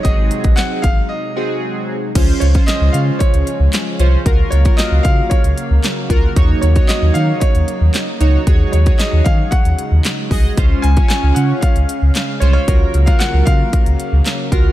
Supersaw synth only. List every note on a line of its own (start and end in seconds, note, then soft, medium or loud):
0.00 2.11 C3 medium
0.00 2.11 F#3 medium
0.00 2.11 G#3 medium
0.00 2.11 D#4 medium
2.15 4.24 C#3 medium
2.15 4.24 F3 medium
2.15 4.24 G#3 medium
2.15 4.24 C#4 medium
4.26 8.43 C#3 medium
4.26 10.53 F#3 medium
4.26 8.43 A#3 medium
4.26 6.34 F5 medium
8.47 12.64 G#3 medium
10.58 12.66 C#4 medium
10.58 14.72 F5 medium
12.68 14.72 F#3 medium
12.68 14.72 A#3 medium